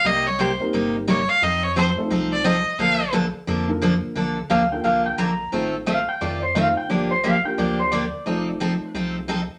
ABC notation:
X:1
M:4/4
L:1/16
Q:"Swing" 1/4=175
K:Bb
V:1 name="Electric slide guitar"
z16 | z16 | z16 | z4 f2 g2 f2 g2 b4 |
z4 f2 g2 d2 c2 f2 g2 | d2 c2 f2 g2 d2 c2 d4- | d8 z8 |]
V:2 name="Fiddle"
e2 _d2 c2 z6 d2 f2 | e2 _d2 c2 z4 =d2 e4 | f4 z12 | z16 |
z16 | z16 | z16 |]
V:3 name="Upright piano"
z6 [B,CEGB]6 z4 | z6 [A,CEFA]6 z4 | z8 z2 [B,DFAB]6 | z6 [B,DFAB]6 z4 |
[CEFAc]2 z8 z2 [CEFAc]2 z2 | [B,DFGB]2 z4 [B,DFGB]6 z4 | [A,CEFA]8- [A,CEFA]2 z6 |]
V:4 name="Steel-string acoustic guitar"
[C,G,B,EG]2 z2 [C,G,B,EG] z3 [C,G,B,EG]2 z2 [C,G,B,EG] z3 | [F,CEA]2 z2 [F,CEA] z3 [F,CEA]2 z2 [F,CEA] z3 | [D,F,B,DA]2 z2 [D,F,B,DA] z3 [D,F,B,DA]2 z2 [D,F,B,DA] z3 | [D,F,B,DA]2 z2 [D,F,B,DA] z3 [D,F,B,DA]2 z2 [D,F,B,DA] z3 |
[E,A,CFA]2 z2 [E,A,CFA] z3 [E,A,CFA]2 z2 [E,A,CFA] z3 | [D,F,B,DG]2 z2 [D,F,B,DG] z3 [D,F,B,DG]2 z2 [D,F,B,DG] z3 | [F,CEA]2 z2 [F,CEA] z3 [F,CEA]2 z2 [F,CEA] z3 |]
V:5 name="Analog synth bass" clef=bass
C,,8 G,,,8 | F,,8 C,,8 | B,,,8 F,,8 | B,,,4 D,,4 C,,4 B,,,4 |
A,,,8 F,,8 | G,,,8 D,,8 | F,,,8 C,,8 |]